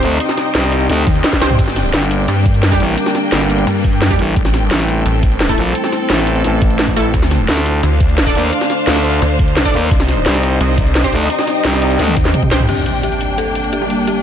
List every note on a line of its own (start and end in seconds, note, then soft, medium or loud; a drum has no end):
0.00 0.19 D2 loud
0.00 1.56 C4 medium
0.00 1.59 D#4 medium
0.00 1.56 G4 medium
0.00 2.56 C5 loud
0.00 1.55 D5 medium
0.00 1.56 D#5 medium
0.00 8.25 G5 medium
0.00 closed hi-hat medium
0.20 closed hi-hat loud
0.29 snare soft
0.37 snare soft
0.37 closed hi-hat medium
0.55 0.88 C2 loud
0.55 snare loud
0.55 closed hi-hat medium
0.63 snare medium
0.63 closed hi-hat soft
0.72 closed hi-hat medium
0.81 closed hi-hat soft
0.89 1.05 D2 loud
0.89 snare soft
0.89 closed hi-hat loud
1.07 1.23 D#2 loud
1.07 kick loud
1.07 closed hi-hat medium
1.07 high tom medium
1.15 closed hi-hat soft
1.24 snare loud
1.24 closed hi-hat loud
1.33 kick medium
1.33 snare medium
1.41 1.57 C2 loud
1.41 1.50 C4 loud
1.41 1.50 G4 medium
1.41 1.50 C5 loud
1.41 snare loud
1.41 closed hi-hat medium
1.50 mid tom medium
1.59 1.92 G1 loud
1.59 4.34 G3 medium
1.59 4.34 D4 medium
1.59 4.81 D4 medium
1.59 9.87 A4 medium
1.59 4.34 A#4 medium
1.59 kick loud
1.59 closed hi-hat loud
1.59 crash medium
1.68 snare soft
1.76 snare soft
1.76 closed hi-hat medium
1.81 4.36 A#3 medium
1.94 2.27 G1 loud
1.94 snare loud
1.94 closed hi-hat loud
2.02 snare soft
2.02 closed hi-hat soft
2.11 closed hi-hat medium
2.28 2.79 G2 loud
2.28 closed hi-hat loud
2.46 kick loud
2.46 closed hi-hat medium
2.54 closed hi-hat soft
2.63 snare loud
2.63 closed hi-hat loud
2.72 2.85 G3 medium
2.72 2.85 D4 medium
2.72 2.85 G4 medium
2.72 kick medium
2.80 2.96 A1 loud
2.80 closed hi-hat medium
2.98 closed hi-hat medium
3.06 snare medium
3.15 snare soft
3.15 closed hi-hat medium
3.32 3.66 G1 loud
3.32 snare loud
3.32 closed hi-hat medium
3.41 snare medium
3.41 closed hi-hat soft
3.50 closed hi-hat medium
3.58 closed hi-hat soft
3.67 4.18 G2 loud
3.67 snare soft
3.67 closed hi-hat loud
3.84 kick loud
3.84 closed hi-hat medium
3.93 closed hi-hat soft
4.02 snare loud
4.02 closed hi-hat loud
4.10 4.24 G3 medium
4.10 4.24 D4 medium
4.10 4.24 G4 medium
4.10 kick medium
4.19 4.35 A1 loud
4.19 closed hi-hat medium
4.36 4.70 A1 loud
4.36 7.11 A3 medium
4.36 8.23 C4 medium
4.36 7.11 E4 medium
4.36 7.11 C5 medium
4.36 kick loud
4.36 closed hi-hat medium
4.45 snare soft
4.54 snare soft
4.54 closed hi-hat medium
4.66 8.25 A4 medium
4.71 5.04 A1 loud
4.71 snare loud
4.71 closed hi-hat medium
4.80 snare medium
4.80 closed hi-hat soft
4.88 closed hi-hat medium
5.06 5.56 A1 loud
5.06 closed hi-hat medium
5.23 kick loud
5.23 closed hi-hat medium
5.32 closed hi-hat soft
5.40 snare loud
5.40 closed hi-hat medium
5.49 5.63 A3 medium
5.49 5.63 E4 medium
5.49 5.63 A4 medium
5.49 kick medium
5.58 5.74 A#1 loud
5.58 closed hi-hat medium
5.75 closed hi-hat medium
5.84 snare soft
5.92 snare soft
5.92 closed hi-hat medium
6.10 6.43 A1 loud
6.10 snare loud
6.10 closed hi-hat medium
6.18 snare soft
6.18 closed hi-hat soft
6.27 closed hi-hat medium
6.36 closed hi-hat soft
6.44 7.12 A1 loud
6.44 snare soft
6.44 closed hi-hat medium
6.62 kick loud
6.62 closed hi-hat medium
6.70 closed hi-hat soft
6.79 snare loud
6.79 closed hi-hat medium
6.88 kick medium
6.96 7.05 A3 loud
6.96 7.05 E4 medium
6.96 7.05 A4 loud
6.96 closed hi-hat medium
7.14 7.47 D2 loud
7.14 9.88 D4 medium
7.14 9.91 D4 medium
7.14 12.65 D5 medium
7.14 9.88 F5 medium
7.14 kick loud
7.14 closed hi-hat medium
7.22 13.43 C5 medium
7.22 snare soft
7.31 snare soft
7.31 closed hi-hat medium
7.41 10.63 F5 medium
7.48 7.82 D2 loud
7.48 snare loud
7.48 closed hi-hat medium
7.57 snare soft
7.57 closed hi-hat soft
7.66 closed hi-hat medium
7.83 8.34 D2 loud
7.83 closed hi-hat medium
8.00 kick loud
8.00 closed hi-hat medium
8.09 closed hi-hat soft
8.18 snare loud
8.18 closed hi-hat medium
8.26 8.40 D4 medium
8.26 8.40 A4 medium
8.26 8.40 D5 medium
8.26 kick medium
8.35 8.51 D#2 loud
8.35 closed hi-hat medium
8.53 closed hi-hat medium
8.61 snare soft
8.70 snare soft
8.70 closed hi-hat medium
8.87 9.20 D2 loud
8.87 snare loud
8.87 closed hi-hat medium
8.96 snare soft
8.96 closed hi-hat soft
9.05 closed hi-hat medium
9.13 closed hi-hat soft
9.22 9.73 D2 loud
9.22 snare soft
9.22 closed hi-hat medium
9.39 kick loud
9.39 closed hi-hat medium
9.48 closed hi-hat soft
9.57 snare loud
9.57 closed hi-hat loud
9.65 9.79 D4 medium
9.65 9.79 A4 medium
9.65 9.79 D5 medium
9.65 kick medium
9.74 9.90 D#2 loud
9.74 closed hi-hat medium
9.91 10.25 C2 loud
9.91 12.66 C4 medium
9.91 12.69 D#4 loud
9.91 12.66 G4 medium
9.91 12.66 D#5 medium
9.91 kick loud
9.91 closed hi-hat loud
10.00 snare soft
10.09 snare soft
10.09 closed hi-hat medium
10.26 10.59 C2 loud
10.26 snare loud
10.26 closed hi-hat medium
10.35 14.22 G5 medium
10.35 snare soft
10.35 closed hi-hat soft
10.43 closed hi-hat medium
10.61 11.11 C2 loud
10.61 closed hi-hat loud
10.78 kick loud
10.78 closed hi-hat medium
10.87 closed hi-hat soft
10.95 snare loud
10.95 closed hi-hat loud
11.04 11.17 C4 medium
11.04 11.17 G4 medium
11.04 11.17 C5 medium
11.04 kick medium
11.13 11.29 D2 loud
11.13 closed hi-hat medium
11.30 closed hi-hat loud
11.39 snare soft
11.47 snare soft
11.47 closed hi-hat medium
11.65 11.98 C2 loud
11.65 snare loud
11.65 closed hi-hat loud
11.73 snare soft
11.73 closed hi-hat soft
11.82 closed hi-hat medium
11.91 closed hi-hat soft
11.99 12.15 D2 loud
11.99 snare medium
11.99 closed hi-hat loud
12.08 high tom medium
12.17 12.33 D#2 loud
12.17 kick loud
12.17 closed hi-hat medium
12.25 snare medium
12.25 closed hi-hat soft
12.34 closed hi-hat loud
12.34 mid tom medium
12.43 kick medium
12.43 mid tom medium
12.51 12.67 C2 loud
12.51 12.60 C4 loud
12.51 12.60 G4 medium
12.51 12.60 C5 loud
12.51 snare loud
12.51 closed hi-hat medium
12.60 mid tom medium
12.69 14.22 G3 medium
12.69 14.22 A#3 medium
12.69 14.22 D4 medium
12.69 12.79 G4 medium
12.69 14.22 A4 medium
12.69 closed hi-hat medium
12.69 crash medium
12.69 impact medium
12.82 14.22 A#3 medium
12.82 closed hi-hat medium
13.03 13.09 G4 medium
13.03 closed hi-hat medium
13.12 closed hi-hat soft
13.21 closed hi-hat medium
13.38 13.48 A4 medium
13.38 closed hi-hat medium
13.55 closed hi-hat medium
13.64 closed hi-hat soft
13.73 13.83 G4 medium
13.73 closed hi-hat medium
13.81 13.95 G3 medium
13.81 13.95 D4 medium
13.81 13.95 G4 medium
13.90 closed hi-hat medium
14.07 14.13 G4 medium
14.07 closed hi-hat medium